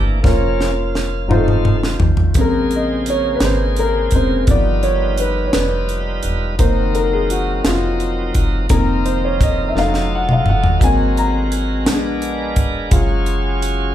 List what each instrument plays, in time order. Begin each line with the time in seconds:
Already playing: fm bass G1, upright piano C3 A#3 E4 G4 C5, tonewheel organ E3 A#3 D4
0.23 fm bass F1, tonewheel organ F3 A#3 C#4 F4, upright piano A#3 C#4 F4 C#5, kick, snare
0.61 snare
0.95 snare
1.28 fm bass F1, tonewheel organ D#3 A3 C4, upright piano F#3 D#4 F4 C5, mid tom
1.36 upright piano A3
1.48 mid tom
1.65 mid tom
1.83 snare
2.00 fm bass A1, floor tom
2.17 floor tom
2.34 fm bass A#1, upright piano C#3 G#3, tonewheel organ C#3 A#3 G#4 C5, kick, closed hi-hat
2.38 upright piano C4 A#4
2.71 closed hi-hat
2.75 upright piano D#5
3.06 upright piano C#5, closed hi-hat
3.36 upright piano B4
3.40 fm bass G#1, snare, closed hi-hat
3.45 upright piano C5
3.76 upright piano A#4, closed hi-hat
4.11 fm bass F1, upright piano C#3 G#3 C4, kick, closed hi-hat
4.15 upright piano C5
4.47 fm bass G1, upright piano D#3 F3 B3 D5, tonewheel organ G3 D#4 F4 B4, kick, closed hi-hat
4.83 upright piano C#5, closed hi-hat
5.18 upright piano B4, closed hi-hat
5.48 upright piano C#5
5.53 fm bass F1, upright piano B4, snare, closed hi-hat
5.89 closed hi-hat
6.23 fm bass E1, closed hi-hat
6.58 fm bass F#1, upright piano D#3 F#3 A#3 C5, tonewheel organ F#3 C4 D#4 A#4, kick, closed hi-hat
6.95 upright piano A#4, closed hi-hat
7.13 upright piano G#4
7.30 upright piano F#4, closed hi-hat
7.65 fm bass F1, upright piano F4, snare, closed hi-hat
8.00 closed hi-hat
8.35 fm bass F#1, kick, closed hi-hat
8.69 fm bass F1, upright piano D#3 A#3 C4 A#4, tonewheel organ F3 C4 D#4 G#4, kick, closed hi-hat
8.77 tonewheel organ A#4
9.06 upright piano C5, closed hi-hat
9.25 upright piano C#5
9.41 upright piano D#5, kick, closed hi-hat
9.69 upright piano E5
9.75 fm bass F1, tonewheel organ F#3 D#4 F4 A4, upright piano F#3 A3 D#4 F5, snare
9.94 snare
10.15 upright piano F#5
10.29 upright piano F5, mid tom
10.45 fm bass F#1, mid tom
10.50 upright piano F#5
10.64 floor tom
10.79 fm bass G#1, upright piano F#3 A#3 C4, tonewheel organ G#3 B3 F#4 A#4, kick, closed hi-hat
10.84 tonewheel organ C4, upright piano G#5
11.17 upright piano A#5, closed hi-hat
11.52 closed hi-hat
11.85 fm bass A#1, tonewheel organ G#3 B3 D4 A#4, upright piano G#3 B3, snare, closed hi-hat
11.90 upright piano D4
12.22 closed hi-hat
12.56 fm bass F1, kick, closed hi-hat
12.91 fm bass F#1, upright piano F#3 G#3 C#4 F4, tonewheel organ F#3 C#4 F4 G#4, kick, closed hi-hat
13.26 closed hi-hat
13.62 closed hi-hat